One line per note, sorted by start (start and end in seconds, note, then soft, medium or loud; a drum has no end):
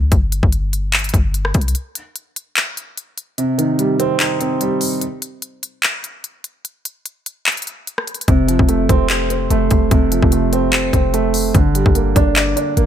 0.00 0.11 D2 loud
0.12 0.42 G1 loud
0.12 kick loud
0.12 closed hi-hat medium
0.32 closed hi-hat loud
0.43 1.11 G1 loud
0.43 kick loud
0.52 closed hi-hat medium
0.73 closed hi-hat medium
0.93 clap loud
0.93 closed hi-hat soft
0.99 closed hi-hat medium
1.04 closed hi-hat medium
1.09 closed hi-hat medium
1.14 1.53 G1 loud
1.14 kick loud
1.14 closed hi-hat medium
1.34 closed hi-hat medium
1.45 cross-stick medium
1.54 1.74 C2 loud
1.54 kick loud
1.54 closed hi-hat soft
1.54 open hi-hat medium
1.61 closed hi-hat medium
1.68 closed hi-hat medium
1.75 closed hi-hat medium
1.95 closed hi-hat loud
2.16 closed hi-hat medium
2.36 closed hi-hat medium
2.57 clap loud
2.57 closed hi-hat medium
2.77 closed hi-hat medium
2.97 closed hi-hat medium
3.18 closed hi-hat medium
3.38 4.40 C3 medium
3.38 closed hi-hat medium
3.58 4.60 D#3 medium
3.58 closed hi-hat medium
3.79 4.60 G3 medium
3.79 closed hi-hat medium
4.00 4.39 C4 loud
4.00 closed hi-hat medium
4.19 5.01 D#4 medium
4.19 clap loud
4.19 closed hi-hat medium
4.40 5.02 C4 medium
4.40 closed hi-hat medium
4.61 5.02 G3 medium
4.61 closed hi-hat medium
4.81 open hi-hat medium
5.01 closed hi-hat medium
5.22 closed hi-hat loud
5.42 closed hi-hat medium
5.63 closed hi-hat medium
5.83 clap loud
5.83 closed hi-hat medium
6.04 closed hi-hat medium
6.24 closed hi-hat medium
6.44 closed hi-hat medium
6.65 closed hi-hat medium
6.85 closed hi-hat loud
7.06 closed hi-hat medium
7.26 closed hi-hat medium
7.46 clap loud
7.46 closed hi-hat soft
7.52 closed hi-hat medium
7.57 closed hi-hat medium
7.62 closed hi-hat medium
7.67 closed hi-hat medium
7.87 closed hi-hat medium
7.98 cross-stick medium
8.07 closed hi-hat soft
8.07 open hi-hat medium
8.14 closed hi-hat medium
8.21 closed hi-hat medium
8.28 8.58 F1 loud
8.28 9.30 C3 medium
8.28 kick loud
8.28 closed hi-hat medium
8.48 9.50 F3 medium
8.48 closed hi-hat loud
8.59 8.88 F1 loud
8.59 kick loud
8.69 9.49 A3 medium
8.69 closed hi-hat medium
8.89 9.48 F1 loud
8.89 9.29 C4 loud
8.89 kick loud
8.89 closed hi-hat medium
9.10 10.12 C5 medium
9.10 clap loud
9.10 closed hi-hat medium
9.30 10.32 C4 medium
9.30 closed hi-hat medium
9.50 9.70 F1 loud
9.50 10.31 A3 loud
9.50 closed hi-hat medium
9.71 9.91 F1 loud
9.71 kick loud
9.71 closed hi-hat medium
9.91 10.21 F1 loud
9.91 10.93 C3 medium
9.91 kick loud
9.91 closed hi-hat medium
10.11 11.14 F3 medium
10.11 closed hi-hat loud
10.23 10.91 F1 loud
10.23 kick loud
10.32 11.12 A3 medium
10.32 closed hi-hat medium
10.53 10.92 C4 medium
10.53 closed hi-hat medium
10.73 11.55 C5 medium
10.73 clap loud
10.73 closed hi-hat medium
10.93 11.52 F1 loud
10.93 11.55 C4 medium
10.93 kick medium
10.93 closed hi-hat medium
11.14 11.55 A3 medium
11.14 closed hi-hat medium
11.34 open hi-hat medium
11.54 11.85 G1 loud
11.54 12.57 D3 medium
11.54 kick loud
11.54 closed hi-hat medium
11.75 12.77 G3 medium
11.75 closed hi-hat loud
11.86 12.15 G1 loud
11.86 kick loud
11.95 12.75 A#3 medium
11.95 closed hi-hat medium
12.16 12.55 G1 loud
12.16 12.55 D4 medium
12.16 kick loud
12.16 closed hi-hat medium
12.36 12.86 D5 medium
12.36 clap loud
12.36 closed hi-hat medium
12.56 12.86 D4 medium
12.56 closed hi-hat medium
12.77 12.86 G1 loud
12.77 12.86 A#3 medium
12.77 closed hi-hat medium